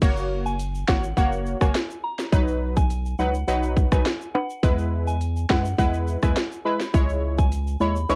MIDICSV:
0, 0, Header, 1, 5, 480
1, 0, Start_track
1, 0, Tempo, 576923
1, 14, Time_signature, 4, 2, 24, 8
1, 6783, End_track
2, 0, Start_track
2, 0, Title_t, "Synth bell"
2, 0, Program_c, 0, 98
2, 382, Note_on_c, 0, 80, 86
2, 477, Note_off_c, 0, 80, 0
2, 734, Note_on_c, 0, 78, 77
2, 842, Note_off_c, 0, 78, 0
2, 975, Note_on_c, 0, 78, 77
2, 1082, Note_off_c, 0, 78, 0
2, 1342, Note_on_c, 0, 80, 67
2, 1437, Note_off_c, 0, 80, 0
2, 1695, Note_on_c, 0, 82, 69
2, 1802, Note_off_c, 0, 82, 0
2, 2301, Note_on_c, 0, 80, 81
2, 2397, Note_off_c, 0, 80, 0
2, 2654, Note_on_c, 0, 78, 88
2, 2762, Note_off_c, 0, 78, 0
2, 2895, Note_on_c, 0, 78, 81
2, 3002, Note_off_c, 0, 78, 0
2, 3261, Note_on_c, 0, 80, 82
2, 3357, Note_off_c, 0, 80, 0
2, 3615, Note_on_c, 0, 78, 78
2, 3722, Note_off_c, 0, 78, 0
2, 4222, Note_on_c, 0, 80, 86
2, 4317, Note_off_c, 0, 80, 0
2, 4574, Note_on_c, 0, 78, 78
2, 4682, Note_off_c, 0, 78, 0
2, 4815, Note_on_c, 0, 78, 79
2, 4922, Note_off_c, 0, 78, 0
2, 5182, Note_on_c, 0, 80, 69
2, 5277, Note_off_c, 0, 80, 0
2, 5535, Note_on_c, 0, 83, 72
2, 5642, Note_off_c, 0, 83, 0
2, 6142, Note_on_c, 0, 80, 84
2, 6237, Note_off_c, 0, 80, 0
2, 6496, Note_on_c, 0, 83, 84
2, 6603, Note_off_c, 0, 83, 0
2, 6735, Note_on_c, 0, 85, 85
2, 6783, Note_off_c, 0, 85, 0
2, 6783, End_track
3, 0, Start_track
3, 0, Title_t, "Synth stab"
3, 0, Program_c, 1, 62
3, 12, Note_on_c, 1, 58, 96
3, 15, Note_on_c, 1, 66, 87
3, 17, Note_on_c, 1, 73, 108
3, 457, Note_off_c, 1, 58, 0
3, 458, Note_off_c, 1, 66, 0
3, 460, Note_off_c, 1, 73, 0
3, 733, Note_on_c, 1, 58, 78
3, 735, Note_on_c, 1, 66, 78
3, 738, Note_on_c, 1, 73, 91
3, 859, Note_off_c, 1, 58, 0
3, 860, Note_off_c, 1, 66, 0
3, 861, Note_off_c, 1, 73, 0
3, 972, Note_on_c, 1, 58, 100
3, 975, Note_on_c, 1, 66, 90
3, 977, Note_on_c, 1, 73, 108
3, 1310, Note_off_c, 1, 58, 0
3, 1311, Note_off_c, 1, 66, 0
3, 1312, Note_off_c, 1, 73, 0
3, 1339, Note_on_c, 1, 58, 82
3, 1342, Note_on_c, 1, 66, 76
3, 1345, Note_on_c, 1, 73, 85
3, 1451, Note_off_c, 1, 58, 0
3, 1453, Note_off_c, 1, 66, 0
3, 1454, Note_off_c, 1, 73, 0
3, 1932, Note_on_c, 1, 54, 95
3, 1935, Note_on_c, 1, 63, 85
3, 1937, Note_on_c, 1, 71, 104
3, 2377, Note_off_c, 1, 54, 0
3, 2378, Note_off_c, 1, 63, 0
3, 2380, Note_off_c, 1, 71, 0
3, 2653, Note_on_c, 1, 54, 81
3, 2655, Note_on_c, 1, 63, 71
3, 2658, Note_on_c, 1, 71, 87
3, 2779, Note_off_c, 1, 54, 0
3, 2780, Note_off_c, 1, 63, 0
3, 2781, Note_off_c, 1, 71, 0
3, 2892, Note_on_c, 1, 54, 98
3, 2894, Note_on_c, 1, 63, 91
3, 2897, Note_on_c, 1, 71, 105
3, 3230, Note_off_c, 1, 54, 0
3, 3231, Note_off_c, 1, 63, 0
3, 3232, Note_off_c, 1, 71, 0
3, 3259, Note_on_c, 1, 54, 79
3, 3262, Note_on_c, 1, 63, 72
3, 3264, Note_on_c, 1, 71, 88
3, 3371, Note_off_c, 1, 54, 0
3, 3373, Note_off_c, 1, 63, 0
3, 3374, Note_off_c, 1, 71, 0
3, 3852, Note_on_c, 1, 56, 99
3, 3855, Note_on_c, 1, 64, 84
3, 3857, Note_on_c, 1, 71, 107
3, 4297, Note_off_c, 1, 56, 0
3, 4298, Note_off_c, 1, 64, 0
3, 4299, Note_off_c, 1, 71, 0
3, 4571, Note_on_c, 1, 56, 83
3, 4574, Note_on_c, 1, 64, 73
3, 4576, Note_on_c, 1, 71, 90
3, 4698, Note_off_c, 1, 56, 0
3, 4699, Note_off_c, 1, 64, 0
3, 4700, Note_off_c, 1, 71, 0
3, 4811, Note_on_c, 1, 56, 100
3, 4814, Note_on_c, 1, 64, 90
3, 4816, Note_on_c, 1, 71, 112
3, 5149, Note_off_c, 1, 56, 0
3, 5150, Note_off_c, 1, 64, 0
3, 5152, Note_off_c, 1, 71, 0
3, 5179, Note_on_c, 1, 56, 80
3, 5182, Note_on_c, 1, 64, 76
3, 5184, Note_on_c, 1, 71, 88
3, 5291, Note_off_c, 1, 56, 0
3, 5293, Note_off_c, 1, 64, 0
3, 5294, Note_off_c, 1, 71, 0
3, 5532, Note_on_c, 1, 56, 77
3, 5534, Note_on_c, 1, 64, 73
3, 5537, Note_on_c, 1, 71, 84
3, 5658, Note_off_c, 1, 56, 0
3, 5660, Note_off_c, 1, 64, 0
3, 5661, Note_off_c, 1, 71, 0
3, 5772, Note_on_c, 1, 56, 92
3, 5774, Note_on_c, 1, 64, 86
3, 5777, Note_on_c, 1, 73, 102
3, 6217, Note_off_c, 1, 56, 0
3, 6218, Note_off_c, 1, 64, 0
3, 6219, Note_off_c, 1, 73, 0
3, 6491, Note_on_c, 1, 56, 77
3, 6494, Note_on_c, 1, 64, 75
3, 6497, Note_on_c, 1, 73, 93
3, 6618, Note_off_c, 1, 56, 0
3, 6619, Note_off_c, 1, 64, 0
3, 6621, Note_off_c, 1, 73, 0
3, 6732, Note_on_c, 1, 56, 100
3, 6734, Note_on_c, 1, 64, 93
3, 6736, Note_on_c, 1, 73, 108
3, 6783, Note_off_c, 1, 56, 0
3, 6783, Note_off_c, 1, 64, 0
3, 6783, Note_off_c, 1, 73, 0
3, 6783, End_track
4, 0, Start_track
4, 0, Title_t, "Sub bass"
4, 0, Program_c, 2, 38
4, 14, Note_on_c, 2, 30, 109
4, 701, Note_off_c, 2, 30, 0
4, 735, Note_on_c, 2, 32, 98
4, 944, Note_off_c, 2, 32, 0
4, 973, Note_on_c, 2, 30, 101
4, 1294, Note_off_c, 2, 30, 0
4, 1342, Note_on_c, 2, 30, 81
4, 1440, Note_off_c, 2, 30, 0
4, 1934, Note_on_c, 2, 35, 104
4, 2621, Note_off_c, 2, 35, 0
4, 2654, Note_on_c, 2, 37, 92
4, 2864, Note_off_c, 2, 37, 0
4, 2895, Note_on_c, 2, 35, 113
4, 3215, Note_off_c, 2, 35, 0
4, 3261, Note_on_c, 2, 35, 94
4, 3360, Note_off_c, 2, 35, 0
4, 3854, Note_on_c, 2, 40, 110
4, 4541, Note_off_c, 2, 40, 0
4, 4575, Note_on_c, 2, 42, 95
4, 4784, Note_off_c, 2, 42, 0
4, 4813, Note_on_c, 2, 40, 98
4, 5134, Note_off_c, 2, 40, 0
4, 5181, Note_on_c, 2, 40, 89
4, 5280, Note_off_c, 2, 40, 0
4, 5774, Note_on_c, 2, 37, 117
4, 6461, Note_off_c, 2, 37, 0
4, 6494, Note_on_c, 2, 39, 95
4, 6704, Note_off_c, 2, 39, 0
4, 6734, Note_on_c, 2, 37, 110
4, 6783, Note_off_c, 2, 37, 0
4, 6783, End_track
5, 0, Start_track
5, 0, Title_t, "Drums"
5, 14, Note_on_c, 9, 36, 116
5, 14, Note_on_c, 9, 42, 72
5, 14, Note_on_c, 9, 49, 99
5, 17, Note_on_c, 9, 82, 78
5, 97, Note_off_c, 9, 42, 0
5, 97, Note_off_c, 9, 49, 0
5, 98, Note_off_c, 9, 36, 0
5, 100, Note_off_c, 9, 82, 0
5, 140, Note_on_c, 9, 82, 51
5, 224, Note_off_c, 9, 82, 0
5, 382, Note_on_c, 9, 82, 69
5, 466, Note_off_c, 9, 82, 0
5, 495, Note_on_c, 9, 42, 73
5, 495, Note_on_c, 9, 82, 71
5, 578, Note_off_c, 9, 42, 0
5, 579, Note_off_c, 9, 82, 0
5, 623, Note_on_c, 9, 82, 52
5, 706, Note_off_c, 9, 82, 0
5, 731, Note_on_c, 9, 82, 57
5, 734, Note_on_c, 9, 38, 115
5, 735, Note_on_c, 9, 36, 98
5, 814, Note_off_c, 9, 82, 0
5, 817, Note_off_c, 9, 38, 0
5, 818, Note_off_c, 9, 36, 0
5, 862, Note_on_c, 9, 82, 69
5, 945, Note_off_c, 9, 82, 0
5, 973, Note_on_c, 9, 36, 86
5, 976, Note_on_c, 9, 42, 78
5, 977, Note_on_c, 9, 82, 74
5, 1057, Note_off_c, 9, 36, 0
5, 1059, Note_off_c, 9, 42, 0
5, 1060, Note_off_c, 9, 82, 0
5, 1100, Note_on_c, 9, 82, 55
5, 1183, Note_off_c, 9, 82, 0
5, 1216, Note_on_c, 9, 82, 56
5, 1299, Note_off_c, 9, 82, 0
5, 1341, Note_on_c, 9, 37, 102
5, 1341, Note_on_c, 9, 82, 74
5, 1342, Note_on_c, 9, 36, 99
5, 1424, Note_off_c, 9, 37, 0
5, 1424, Note_off_c, 9, 82, 0
5, 1425, Note_off_c, 9, 36, 0
5, 1455, Note_on_c, 9, 42, 79
5, 1455, Note_on_c, 9, 82, 68
5, 1456, Note_on_c, 9, 38, 123
5, 1538, Note_off_c, 9, 42, 0
5, 1538, Note_off_c, 9, 82, 0
5, 1539, Note_off_c, 9, 38, 0
5, 1585, Note_on_c, 9, 82, 52
5, 1668, Note_off_c, 9, 82, 0
5, 1820, Note_on_c, 9, 38, 72
5, 1822, Note_on_c, 9, 82, 78
5, 1904, Note_off_c, 9, 38, 0
5, 1905, Note_off_c, 9, 82, 0
5, 1934, Note_on_c, 9, 36, 121
5, 1934, Note_on_c, 9, 42, 74
5, 1937, Note_on_c, 9, 82, 81
5, 2017, Note_off_c, 9, 42, 0
5, 2018, Note_off_c, 9, 36, 0
5, 2020, Note_off_c, 9, 82, 0
5, 2060, Note_on_c, 9, 82, 51
5, 2144, Note_off_c, 9, 82, 0
5, 2302, Note_on_c, 9, 82, 67
5, 2304, Note_on_c, 9, 36, 88
5, 2385, Note_off_c, 9, 82, 0
5, 2387, Note_off_c, 9, 36, 0
5, 2415, Note_on_c, 9, 42, 74
5, 2416, Note_on_c, 9, 82, 69
5, 2498, Note_off_c, 9, 42, 0
5, 2499, Note_off_c, 9, 82, 0
5, 2543, Note_on_c, 9, 82, 52
5, 2626, Note_off_c, 9, 82, 0
5, 2651, Note_on_c, 9, 82, 58
5, 2734, Note_off_c, 9, 82, 0
5, 2782, Note_on_c, 9, 82, 73
5, 2865, Note_off_c, 9, 82, 0
5, 2896, Note_on_c, 9, 42, 78
5, 2897, Note_on_c, 9, 82, 71
5, 2979, Note_off_c, 9, 42, 0
5, 2980, Note_off_c, 9, 82, 0
5, 3020, Note_on_c, 9, 82, 53
5, 3103, Note_off_c, 9, 82, 0
5, 3134, Note_on_c, 9, 36, 93
5, 3136, Note_on_c, 9, 82, 54
5, 3217, Note_off_c, 9, 36, 0
5, 3220, Note_off_c, 9, 82, 0
5, 3261, Note_on_c, 9, 36, 101
5, 3261, Note_on_c, 9, 37, 98
5, 3262, Note_on_c, 9, 82, 71
5, 3344, Note_off_c, 9, 37, 0
5, 3345, Note_off_c, 9, 36, 0
5, 3345, Note_off_c, 9, 82, 0
5, 3374, Note_on_c, 9, 42, 79
5, 3375, Note_on_c, 9, 82, 66
5, 3376, Note_on_c, 9, 38, 123
5, 3457, Note_off_c, 9, 42, 0
5, 3458, Note_off_c, 9, 82, 0
5, 3459, Note_off_c, 9, 38, 0
5, 3505, Note_on_c, 9, 82, 50
5, 3589, Note_off_c, 9, 82, 0
5, 3619, Note_on_c, 9, 65, 68
5, 3702, Note_off_c, 9, 65, 0
5, 3743, Note_on_c, 9, 82, 79
5, 3826, Note_off_c, 9, 82, 0
5, 3854, Note_on_c, 9, 36, 119
5, 3854, Note_on_c, 9, 42, 75
5, 3857, Note_on_c, 9, 82, 79
5, 3937, Note_off_c, 9, 36, 0
5, 3937, Note_off_c, 9, 42, 0
5, 3940, Note_off_c, 9, 82, 0
5, 3981, Note_on_c, 9, 82, 51
5, 4065, Note_off_c, 9, 82, 0
5, 4223, Note_on_c, 9, 82, 67
5, 4306, Note_off_c, 9, 82, 0
5, 4335, Note_on_c, 9, 42, 75
5, 4336, Note_on_c, 9, 82, 67
5, 4418, Note_off_c, 9, 42, 0
5, 4419, Note_off_c, 9, 82, 0
5, 4463, Note_on_c, 9, 82, 53
5, 4546, Note_off_c, 9, 82, 0
5, 4571, Note_on_c, 9, 82, 53
5, 4574, Note_on_c, 9, 38, 111
5, 4575, Note_on_c, 9, 36, 96
5, 4654, Note_off_c, 9, 82, 0
5, 4657, Note_off_c, 9, 38, 0
5, 4658, Note_off_c, 9, 36, 0
5, 4701, Note_on_c, 9, 82, 73
5, 4784, Note_off_c, 9, 82, 0
5, 4813, Note_on_c, 9, 36, 88
5, 4816, Note_on_c, 9, 42, 77
5, 4816, Note_on_c, 9, 82, 70
5, 4896, Note_off_c, 9, 36, 0
5, 4899, Note_off_c, 9, 42, 0
5, 4900, Note_off_c, 9, 82, 0
5, 4939, Note_on_c, 9, 82, 53
5, 5023, Note_off_c, 9, 82, 0
5, 5054, Note_on_c, 9, 82, 58
5, 5137, Note_off_c, 9, 82, 0
5, 5180, Note_on_c, 9, 82, 77
5, 5181, Note_on_c, 9, 36, 98
5, 5181, Note_on_c, 9, 37, 100
5, 5263, Note_off_c, 9, 82, 0
5, 5264, Note_off_c, 9, 37, 0
5, 5265, Note_off_c, 9, 36, 0
5, 5294, Note_on_c, 9, 42, 80
5, 5294, Note_on_c, 9, 82, 64
5, 5296, Note_on_c, 9, 38, 125
5, 5377, Note_off_c, 9, 42, 0
5, 5377, Note_off_c, 9, 82, 0
5, 5379, Note_off_c, 9, 38, 0
5, 5423, Note_on_c, 9, 82, 52
5, 5507, Note_off_c, 9, 82, 0
5, 5660, Note_on_c, 9, 38, 68
5, 5661, Note_on_c, 9, 82, 77
5, 5743, Note_off_c, 9, 38, 0
5, 5744, Note_off_c, 9, 82, 0
5, 5774, Note_on_c, 9, 36, 117
5, 5774, Note_on_c, 9, 42, 72
5, 5775, Note_on_c, 9, 82, 79
5, 5857, Note_off_c, 9, 42, 0
5, 5858, Note_off_c, 9, 36, 0
5, 5858, Note_off_c, 9, 82, 0
5, 5899, Note_on_c, 9, 82, 51
5, 5982, Note_off_c, 9, 82, 0
5, 6142, Note_on_c, 9, 82, 67
5, 6144, Note_on_c, 9, 36, 87
5, 6225, Note_off_c, 9, 82, 0
5, 6227, Note_off_c, 9, 36, 0
5, 6254, Note_on_c, 9, 42, 70
5, 6256, Note_on_c, 9, 82, 70
5, 6338, Note_off_c, 9, 42, 0
5, 6339, Note_off_c, 9, 82, 0
5, 6382, Note_on_c, 9, 82, 54
5, 6466, Note_off_c, 9, 82, 0
5, 6491, Note_on_c, 9, 82, 57
5, 6574, Note_off_c, 9, 82, 0
5, 6621, Note_on_c, 9, 82, 68
5, 6704, Note_off_c, 9, 82, 0
5, 6735, Note_on_c, 9, 65, 53
5, 6735, Note_on_c, 9, 82, 73
5, 6736, Note_on_c, 9, 42, 78
5, 6783, Note_off_c, 9, 42, 0
5, 6783, Note_off_c, 9, 65, 0
5, 6783, Note_off_c, 9, 82, 0
5, 6783, End_track
0, 0, End_of_file